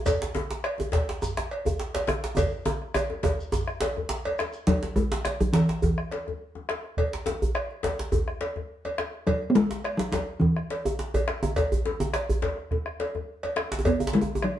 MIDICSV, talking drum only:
0, 0, Header, 1, 2, 480
1, 0, Start_track
1, 0, Key_signature, 4, "major"
1, 0, Tempo, 574163
1, 48, Time_signature, 4, 2, 24, 8
1, 12200, End_track
2, 0, Start_track
2, 0, Title_t, "Talking drum"
2, 0, Program_c, 0, 116
2, 3906, Note_on_c, 0, 54, 83
2, 4144, Note_on_c, 0, 56, 87
2, 4157, Note_off_c, 0, 54, 0
2, 4517, Note_on_c, 0, 54, 89
2, 4530, Note_off_c, 0, 56, 0
2, 4621, Note_on_c, 0, 52, 75
2, 4634, Note_off_c, 0, 54, 0
2, 4865, Note_off_c, 0, 52, 0
2, 4876, Note_on_c, 0, 52, 70
2, 5560, Note_off_c, 0, 52, 0
2, 7747, Note_on_c, 0, 54, 89
2, 7941, Note_on_c, 0, 59, 78
2, 7954, Note_off_c, 0, 54, 0
2, 7985, Note_on_c, 0, 56, 106
2, 7998, Note_off_c, 0, 59, 0
2, 8338, Note_on_c, 0, 54, 91
2, 8351, Note_off_c, 0, 56, 0
2, 8453, Note_off_c, 0, 54, 0
2, 8458, Note_on_c, 0, 54, 77
2, 8691, Note_on_c, 0, 52, 71
2, 8704, Note_off_c, 0, 54, 0
2, 9418, Note_off_c, 0, 52, 0
2, 11594, Note_on_c, 0, 59, 87
2, 11698, Note_off_c, 0, 59, 0
2, 11828, Note_on_c, 0, 56, 81
2, 12072, Note_on_c, 0, 54, 78
2, 12084, Note_off_c, 0, 56, 0
2, 12200, Note_off_c, 0, 54, 0
2, 12200, End_track
0, 0, End_of_file